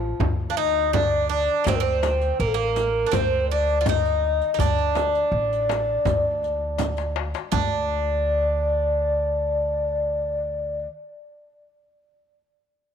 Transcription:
Already playing: A1 F3 F4
0.20 D2, frame drum, darbuka dum
0.50 D4 F5
0.57 D#4 D#5
0.93 D4 D5, darbuka dum, frame drum
1.29 D4 D5
1.64 D2 A#3 C4, riq, darbuka dum, frame drum
1.69 C5
1.75 A#4
1.80 C4 C5
2.03 riq, darbuka tek, frame drum
2.21 riq
2.39 A1 A#3 A#4
2.47 A4
2.54 A#3 A#4
2.59 darbuka ka
2.76 riq, frame drum
3.07 D4
3.12 D2 C4 C5, riq, frame drum, darbuka dum
3.50 D4 D5
3.81 F4
3.85 D#4 D#5, riq, frame drum, darbuka dum
4.06 riq
4.42 riq
4.54 D#4
4.59 D2 D4 D5, riq, darbuka dum, frame drum
4.78 riq
4.95 riq, darbuka tek, frame drum
5.14 riq, darbuka ka
5.32 A1, darbuka ka
5.53 riq
5.69 riq, darbuka tek, frame drum
6.05 D2, riq, darbuka dum, frame drum
6.43 riq, darbuka ka
6.78 riq, darbuka tek, frame drum
6.97 riq, darbuka ka
7.16 darbuka tek
7.34 riq, darbuka ka
7.52 D2 D4 D5, riq, darbuka dum, frame drum

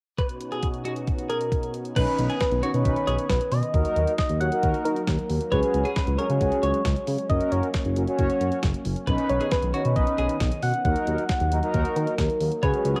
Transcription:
0.18 B2 B3 C#4 D#4 F#4 B4, kick, closed hi-hat
0.29 closed hi-hat
0.41 closed hi-hat
0.52 G#4, closed hi-hat
0.63 kick, closed hi-hat
0.74 closed hi-hat
0.85 F#4, closed hi-hat
0.96 closed hi-hat
1.07 kick, closed hi-hat
1.18 closed hi-hat
1.29 G#4 A#4, closed hi-hat
1.41 closed hi-hat
1.52 kick, closed hi-hat
1.63 closed hi-hat
1.74 closed hi-hat
1.85 closed hi-hat
1.96 B1 D#3 B3 C#4 D#4 B4, kick, closed hi-hat, crash
2.07 closed hi-hat
2.18 B1, closed hi-hat
2.30 G#4, closed hi-hat
2.40 B4, kick, snare, closed hi-hat
2.52 B1, closed hi-hat
2.63 C#4 D#4 F#4 B4 C#5, closed hi-hat
2.74 B2 C#4 D#4 B4, closed hi-hat
2.85 B1, kick, closed hi-hat
2.96 closed hi-hat
3.07 B1 G#4 C#5, closed hi-hat
3.18 closed hi-hat
3.29 B1 B4, kick, snare, closed hi-hat
3.41 closed hi-hat
3.52 B2 D#5, open hi-hat
3.63 closed hi-hat
3.74 D#2 F#3 A#3 D#4 F#4 A#4, kick, closed hi-hat
3.85 closed hi-hat
3.96 D#2, closed hi-hat
4.07 closed hi-hat
4.18 D#5, kick, snare, closed hi-hat
4.29 D#2, closed hi-hat
4.40 D#2 D#4 F#4 C#5 F#5, closed hi-hat
4.52 D#4 F#4 A#4, closed hi-hat
4.63 D#2, kick, closed hi-hat
4.74 closed hi-hat
4.85 D#3 A#4, closed hi-hat
4.96 closed hi-hat
5.07 D#2, kick, snare, closed hi-hat
5.19 closed hi-hat
5.30 D#2, open hi-hat
5.41 closed hi-hat
5.52 C#2 G#3 C#4 F#4 G#4 B4 C#5, kick, closed hi-hat
5.63 closed hi-hat
5.74 C#2, closed hi-hat
5.85 G#4, closed hi-hat
5.96 B4, kick, snare, closed hi-hat
6.07 C#2, closed hi-hat
6.18 C#4 F#4 G#4 A#4 C#5, closed hi-hat
6.30 C#3 C#4 F#4 G#4, closed hi-hat
6.41 C#2, kick, closed hi-hat
6.52 closed hi-hat
6.63 C#2 C#5, closed hi-hat
6.74 closed hi-hat
6.85 C#2, kick, snare, closed hi-hat
6.96 closed hi-hat
7.07 C#3, open hi-hat
7.18 closed hi-hat
7.29 F#1 F#3 A#3 C#4 F#4 A#4 D#5, kick, closed hi-hat
7.41 closed hi-hat
7.52 F#1 C#5, closed hi-hat
7.63 closed hi-hat
7.74 kick, snare, closed hi-hat
7.85 F#1, closed hi-hat
7.96 F#1 C#4 F#4 A#4, closed hi-hat
8.07 C#4 F#4 C#5, closed hi-hat
8.19 F#1, kick, closed hi-hat
8.30 closed hi-hat
8.41 F#2, closed hi-hat
8.52 closed hi-hat
8.63 F#1, kick, snare, closed hi-hat
8.74 closed hi-hat
8.85 F#1, open hi-hat
8.96 closed hi-hat
9.07 B1 D#3 B3 C#4 D#4 B4, kick, closed hi-hat
9.18 closed hi-hat
9.29 B1 C#5, closed hi-hat
9.41 G#4, closed hi-hat
9.51 B4, kick, snare, closed hi-hat
9.62 B1, closed hi-hat
9.74 C#4 D#4 F#4 B4 C#5, closed hi-hat
9.85 B2 C#4 D#4 B4, closed hi-hat
9.96 B1 D#5, kick, closed hi-hat
10.07 closed hi-hat
10.18 B1 G#4, closed hi-hat
10.29 closed hi-hat
10.40 B1, kick, snare, closed hi-hat
10.52 closed hi-hat
10.63 B2 F#5, open hi-hat
10.74 closed hi-hat
10.85 D#2 F#3 A#3 D#4 F#4 A#4 F#5, kick, closed hi-hat
10.96 closed hi-hat
11.07 D#2, closed hi-hat
11.18 closed hi-hat
11.29 kick, snare, closed hi-hat
11.40 D#2, closed hi-hat
11.52 D#2 D#4 F#4 A#4, closed hi-hat
11.63 D#4 F#4 A#4, closed hi-hat
11.74 D#2, kick, closed hi-hat
11.85 closed hi-hat
11.96 D#3 A#4, closed hi-hat
12.07 closed hi-hat
12.18 D#2, kick, snare, closed hi-hat
12.30 closed hi-hat
12.40 D#2, open hi-hat
12.52 closed hi-hat
12.63 C#2 G#3 C#4 F#4 G#4 B4 C#5, kick, closed hi-hat
12.74 closed hi-hat
12.85 C#2, closed hi-hat
12.96 G#4, closed hi-hat

